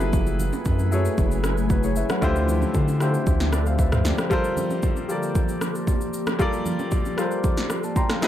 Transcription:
0.00 0.51 F#1 loud
0.00 0.71 F#3 medium
0.00 2.20 F#3 medium
0.00 2.20 A3 medium
0.00 2.20 C#4 medium
0.00 0.71 E4 medium
0.00 2.20 E4 medium
0.00 0.71 G#4 medium
0.00 0.72 A4 medium
0.00 0.72 B4 loud
0.00 2.20 B4 medium
0.00 2.20 G#5 medium
0.00 high bongo medium
0.00 low bongo medium
0.00 shaker medium
0.13 kick loud
0.13 low conga medium
0.13 shaker medium
0.27 high bongo medium
0.27 shaker medium
0.39 low conga medium
0.39 shaker loud
0.53 low bongo medium
0.53 shaker soft
0.65 1.08 F#2 medium
0.65 kick medium
0.65 high bongo medium
0.65 shaker medium
0.79 low bongo soft
0.79 shaker medium
0.91 1.75 F#3 medium
0.91 1.75 E4 medium
0.91 1.70 G#4 medium
0.91 1.71 A4 medium
0.91 1.71 C#5 medium
0.91 shaker medium
1.05 shaker medium
1.18 2.04 F#1 medium
1.18 kick loud
1.18 low conga medium
1.18 shaker medium
1.31 shaker medium
1.44 cross-stick medium
1.44 low bongo medium
1.44 shaker medium
1.58 shaker medium
1.70 1.84 F#4 medium
1.70 1.83 B4 medium
1.70 kick loud
1.70 high bongo medium
1.70 shaker medium
1.83 1.96 G#4 medium
1.83 1.96 C#5 medium
1.83 shaker medium
1.96 2.10 B4 medium
1.96 2.09 E5 medium
1.96 shaker medium
2.09 2.35 C#5 medium
2.09 2.35 F#5 medium
2.09 cross-stick loud
2.09 high bongo medium
2.09 low bongo medium
2.09 shaker medium
2.21 2.65 D2 loud
2.21 2.85 D3 loud
2.21 4.29 D3 medium
2.21 8.18 F3 medium
2.21 2.85 A3 medium
2.21 4.29 C4 medium
2.21 2.85 E4 medium
2.21 2.86 F4 medium
2.21 8.18 G4 medium
2.21 2.86 G4 loud
2.21 2.86 C5 loud
2.21 4.29 E5 medium
2.21 kick loud
2.21 low conga medium
2.21 shaker medium
2.36 high bongo medium
2.36 shaker medium
2.48 low conga medium
2.48 shaker loud
2.62 low bongo medium
2.62 shaker soft
2.74 3.17 D3 medium
2.74 kick loud
2.74 high bongo medium
2.74 shaker medium
2.88 low bongo medium
2.88 shaker medium
2.99 3.42 D3 medium
2.99 3.42 A3 medium
2.99 3.43 E4 medium
2.99 3.43 F4 medium
2.99 3.43 G4 medium
2.99 3.44 C5 medium
2.99 cross-stick medium
2.99 shaker medium
3.14 shaker medium
3.26 4.12 D2 loud
3.26 kick loud
3.26 low conga medium
3.26 shaker medium
3.40 snare medium
3.40 shaker medium
3.52 3.66 A4 medium
3.52 3.66 D5 medium
3.52 cross-stick medium
3.52 low bongo medium
3.52 shaker loud
3.66 3.79 C5 medium
3.66 3.78 F5 medium
3.66 shaker medium
3.79 3.92 B4 medium
3.79 3.92 E5 medium
3.79 kick loud
3.79 high bongo medium
3.79 shaker medium
3.92 4.05 C5 medium
3.92 4.04 F5 medium
3.92 cross-stick medium
3.92 mid tom medium
3.92 shaker medium
4.05 4.18 A4 medium
4.05 4.18 D5 medium
4.05 snare medium
4.05 shaker medium
4.18 4.44 G4 medium
4.18 4.31 C5 medium
4.18 cross-stick loud
4.18 high bongo medium
4.18 low bongo medium
4.18 shaker medium
4.30 4.93 G3 loud
4.30 8.18 A#3 medium
4.30 4.94 F4 medium
4.30 4.94 A4 loud
4.30 4.94 A#4 medium
4.30 4.95 C5 loud
4.30 kick loud
4.30 low conga medium
4.30 shaker medium
4.44 high bongo medium
4.44 shaker medium
4.57 low conga medium
4.57 shaker loud
4.70 low bongo medium
4.70 shaker soft
4.83 kick loud
4.83 high bongo medium
4.83 shaker medium
4.97 low bongo soft
4.97 shaker medium
5.08 5.92 G3 medium
5.08 5.93 F4 medium
5.08 5.93 A4 medium
5.08 5.93 A#4 medium
5.08 5.94 D5 medium
5.08 shaker medium
5.23 shaker medium
5.35 kick loud
5.35 low conga medium
5.35 shaker medium
5.49 shaker medium
5.61 cross-stick medium
5.61 low bongo medium
5.61 shaker loud
5.75 shaker medium
5.87 kick loud
5.87 high bongo medium
5.87 shaker medium
6.01 shaker medium
6.14 shaker medium
6.27 cross-stick loud
6.27 high bongo medium
6.27 low bongo medium
6.27 shaker medium
6.39 7.02 G3 loud
6.39 7.02 F4 loud
6.39 7.03 A4 loud
6.39 7.03 A#4 loud
6.39 7.04 D5 loud
6.39 kick loud
6.39 low conga medium
6.39 shaker medium
6.53 high bongo soft
6.53 shaker medium
6.66 low conga medium
6.66 shaker loud
6.79 low bongo medium
6.79 shaker soft
6.91 kick loud
6.91 high bongo medium
6.91 shaker medium
7.05 low bongo soft
7.05 shaker medium
7.17 7.60 G3 medium
7.17 7.60 F4 medium
7.17 7.60 A4 medium
7.17 7.61 A#4 medium
7.17 7.61 C5 medium
7.17 cross-stick medium
7.17 shaker medium
7.31 shaker medium
7.44 kick loud
7.44 low conga medium
7.44 shaker medium
7.57 snare medium
7.57 shaker medium
7.70 cross-stick medium
7.70 low bongo medium
7.70 shaker loud
7.84 7.96 D5 medium
7.84 7.96 A5 medium
7.84 shaker medium
7.96 8.09 G5 medium
7.96 8.09 A#5 medium
7.96 8.09 C6 medium
7.96 kick loud
7.96 high bongo medium
7.96 shaker medium
8.10 8.28 F5 medium
8.10 8.28 A#5 medium
8.10 cross-stick loud
8.10 snare medium
8.10 shaker medium
8.21 8.28 F#3 medium
8.21 8.28 A3 medium
8.21 8.28 C#4 medium
8.21 8.28 E4 medium
8.21 8.28 G#4 medium
8.21 8.28 A4 medium
8.21 8.28 B4 medium
8.21 8.28 B4 loud
8.21 8.28 D#5 medium
8.21 snare medium
8.21 shaker medium

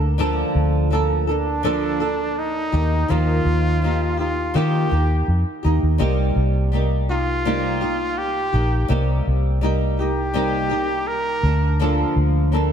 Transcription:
0.00 0.42 D2 medium
0.00 0.18 A#3 soft
0.00 0.19 D4 soft
0.00 0.19 A4 soft
0.18 0.91 D3 medium
0.18 0.90 F3 medium
0.18 0.91 A#3 medium
0.18 0.91 D4 medium
0.18 0.92 A4 medium
0.55 2.69 D2 medium
0.91 1.27 F3 medium
0.91 1.28 A#3 medium
0.91 1.28 D4 medium
0.91 1.26 A4 medium
1.27 1.63 A#3 soft
1.27 1.63 D4 soft
1.27 2.40 D4 medium
1.27 1.64 A4 soft
1.63 2.00 D3 medium
1.63 2.00 F3 medium
1.63 2.01 A#3 medium
1.63 2.01 D4 medium
1.63 1.99 A4 medium
2.00 2.75 A#3 soft
2.00 2.72 A4 soft
2.39 3.12 D#4 medium
2.72 3.03 D#2 medium
2.72 3.08 A#3 soft
2.72 3.09 D#4 soft
2.72 3.09 G4 soft
3.08 3.40 D#2 medium
3.08 3.85 D#3 medium
3.08 3.81 F3 medium
3.08 3.83 A#3 medium
3.08 3.84 D#4 medium
3.08 4.19 F4 medium
3.08 3.85 G4 medium
3.45 4.50 D#2 medium
3.82 4.18 F3 soft
3.82 4.19 A#3 soft
3.82 4.18 D#4 medium
3.82 4.16 G4 soft
4.17 4.53 A#3 soft
4.17 4.54 D#4 soft
4.17 4.58 F4 medium
4.17 4.54 G4 soft
4.54 4.90 D#3 medium
4.54 4.84 D#3 medium
4.54 4.91 F3 medium
4.54 4.91 A#3 medium
4.54 4.90 D#4 medium
4.54 4.88 G4 medium
4.54 5.28 G4 medium
4.89 5.21 D#2 medium
4.89 5.65 A#3 soft
4.89 5.64 D#4 soft
4.89 5.62 G4 soft
5.28 5.42 F2 medium
5.63 5.79 D#2 medium
5.63 5.98 A#3 soft
5.63 5.98 D#4 soft
5.63 5.99 G4 soft
5.83 5.97 D#2 medium
5.98 6.30 C2 medium
5.98 6.71 C3 medium
5.98 6.71 G3 medium
5.98 6.73 A#3 medium
5.98 6.72 D#4 medium
5.98 6.72 G4 medium
6.36 8.49 C2 medium
6.72 7.08 G3 medium
6.72 7.09 A#3 medium
6.72 7.09 D#4 medium
6.72 7.08 G4 medium
7.09 7.45 A#3 soft
7.09 7.46 D#4 soft
7.09 8.19 F4 medium
7.09 7.45 G4 soft
7.45 7.81 C3 medium
7.45 7.81 G3 medium
7.45 7.81 A#3 medium
7.45 7.82 D#4 medium
7.45 7.80 G4 medium
7.81 8.55 A#3 soft
7.81 8.53 D#4 soft
7.81 8.51 G4 soft
8.18 8.90 G4 medium
8.53 8.83 A#1 medium
8.53 8.88 A#3 soft
8.53 8.89 D#4 soft
8.53 8.89 G4 soft
8.88 9.19 C2 medium
8.88 9.62 C3 medium
8.88 9.60 G3 medium
8.88 9.62 A#3 medium
8.88 9.62 D#4 medium
8.88 9.63 G4 medium
9.27 11.40 C2 medium
9.61 9.98 G3 medium
9.61 9.98 A#3 medium
9.61 9.99 D#4 medium
9.61 9.98 G4 medium
9.99 10.33 A#3 soft
9.99 10.34 D#4 soft
9.99 10.34 G4 soft
9.99 11.09 G4 medium
10.34 10.70 C3 medium
10.34 10.71 G3 medium
10.34 10.71 A#3 medium
10.34 10.70 D#4 medium
10.34 10.68 G4 medium
10.69 11.46 A#3 soft
10.69 11.44 D#4 soft
10.69 11.43 G4 soft
11.08 11.80 A#4 loud
11.43 12.03 D2 medium
11.43 11.79 A#3 soft
11.43 11.80 D4 soft
11.79 12.72 D3 medium
11.79 12.51 F3 medium
11.79 12.51 A#3 medium
11.79 12.53 D4 medium
11.79 12.54 A4 medium
12.16 12.72 D2 medium
12.52 12.72 F3 medium
12.52 12.72 A#3 medium
12.52 12.72 D4 medium
12.52 12.72 A4 medium

